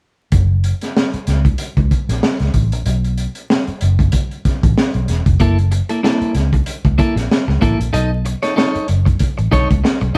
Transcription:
0.32 F#1, kick, closed hi-hat
0.64 closed hi-hat
0.81 snare, closed hi-hat
0.97 snare
1.14 muted fingered electric bass stroke, closed hi-hat
1.27 C#2, snare, closed hi-hat
1.45 kick, closed hi-hat
1.58 closed hi-hat
1.77 C#2, kick, closed hi-hat
1.91 kick, closed hi-hat
2.09 A#1, snare, closed hi-hat
2.23 snare
2.40 C#2, snare, closed hi-hat
2.54 A1, kick, closed hi-hat
2.72 A#1, closed hi-hat
2.86 B1, closed hi-hat
3.04 closed hi-hat
3.18 closed hi-hat
3.35 closed hi-hat
3.50 snare
3.67 muted fingered electric bass stroke, closed hi-hat
3.81 F#1, closed hi-hat
3.99 kick, closed hi-hat
4.12 kick, closed hi-hat
4.31 closed hi-hat
4.45 muted fingered electric bass stroke, kick, snare, closed hi-hat
4.63 A1, kick, closed hi-hat
4.78 snare
4.94 B1, closed hi-hat
5.08 E1, snare, closed hi-hat
5.26 F1, kick, closed hi-hat
5.40 F#1 A#3 E4 A4, kick, closed hi-hat
5.58 closed hi-hat
5.71 muted clean electric guitar stroke, closed hi-hat
5.89 A#3 E4 A4, closed hi-hat
6.03 A#3 E4 A4, snare
6.21 muted fingered electric bass stroke, closed hi-hat
6.35 C#2, muted clean electric guitar stroke, snare, closed hi-hat
6.53 muted clean electric guitar stroke, kick, closed hi-hat
6.66 closed hi-hat
6.85 C#2, muted clean electric guitar stroke, kick, closed hi-hat
6.98 A#3 E4 A4, kick, closed hi-hat
7.16 A#1, muted clean electric guitar stroke, snare, closed hi-hat
7.31 snare
7.48 C#2, muted clean electric guitar stroke, snare
7.61 A1 A#3 E4 A4, kick, closed hi-hat
7.79 A#1, muted clean electric guitar stroke, closed hi-hat
7.93 B1 D#4 A4 D#5, closed hi-hat
8.25 muted clean electric guitar stroke, closed hi-hat
8.43 D#4 A4 C#5, snare, closed hi-hat
8.56 D#4 A4 C#5, snare
8.75 muted fingered electric bass stroke, closed hi-hat
8.88 F#1, muted clean electric guitar stroke, closed hi-hat
9.06 muted clean electric guitar stroke, kick, closed hi-hat
9.19 kick, closed hi-hat
9.38 A1, muted clean electric guitar stroke, closed hi-hat
9.52 B1 D#4 A4 C#5, kick, snare, closed hi-hat
9.70 C#2, muted clean electric guitar stroke, kick, closed hi-hat
9.84 muted clean electric guitar stroke, snare
10.01 B1, muted clean electric guitar stroke, closed hi-hat

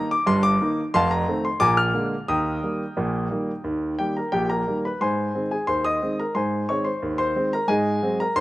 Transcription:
Already playing: D#3 A#3 D#4
0.11 D6
0.26 G1 G2 C6
0.43 D6
0.61 D#3 A#3 D#4
0.94 F1 F2 F5 A5 C6
1.11 A#5
1.28 D#3 A3 C4
1.45 C6
1.60 A#1 A#2 G#5 A#5 D6
1.77 F6
1.94 D3 G#3 A#3
2.28 D#2 D#3 G5 A#5 D#6
2.63 D#3 G3 A#3
2.97 A#1 A#2
3.31 D#3 G3 A#3
3.64 D#2 D#3
3.99 D#3 G3 A#3 G4 G5
4.17 A#4 A#5
4.32 A#1 A#2 G4 G5
4.50 A#4 A#5
4.67 D#3 G3 A#3
4.85 B4 B5
5.01 G#2 C5 G#5 C6
5.35 D#3 G#3 C4
5.51 G#4 G#5
5.67 D#2 C5 C6
5.85 D#5 D#6
6.02 D#3 G#3 C4
6.20 A#4 A#5
6.35 G#2 C5 G#5 C6
6.69 D#3 G#3 C4 C#5 C#6
6.84 C5 C6
7.02 D#2
7.18 C5 C6
7.35 D#3 G#3 C4
7.53 A#4 A#5
7.68 G#2 G#4 D#5 G#5
8.02 F#3 G#3 C4
8.20 A#4 A#5
8.36 D#2 C5 C6

